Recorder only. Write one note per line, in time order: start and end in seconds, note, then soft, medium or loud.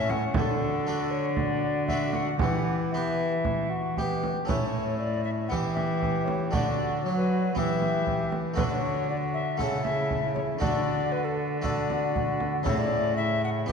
0.00 0.12 E5 loud
0.10 0.37 F#5 medium
0.35 1.13 A4 loud
1.11 1.38 C#5 loud
1.37 1.87 D5 medium
1.87 2.13 E5 medium
2.14 2.38 F#5 medium
2.39 2.73 F#5 medium
2.91 4.18 E5 medium
4.48 4.54 B4 medium
4.62 4.98 C#5 medium
4.99 5.24 D5 medium
5.24 5.30 E5 medium
5.49 5.55 F#5 medium
5.75 6.26 E5 medium
6.25 6.53 C#5 medium
6.51 7.05 D5 medium
7.03 7.16 C#5 medium
7.17 7.55 B4 medium
7.56 8.31 E5 medium
7.56 7.60 F#5 medium
8.57 8.63 B4 medium
8.69 8.75 D5 medium
8.74 9.08 C#5 medium
9.10 9.16 D5 medium
9.34 9.60 E5 medium
9.58 9.84 F#5 medium
9.85 10.34 E5 medium
10.34 10.40 C#5 medium
10.60 11.14 D5 medium
11.12 11.26 B4 medium
11.25 11.61 A4 medium
11.62 12.38 D5 medium
11.62 11.66 E5 medium
12.65 12.77 C#5 medium
12.78 13.16 D5 medium
13.16 13.42 E5 medium
13.44 13.50 F#5 medium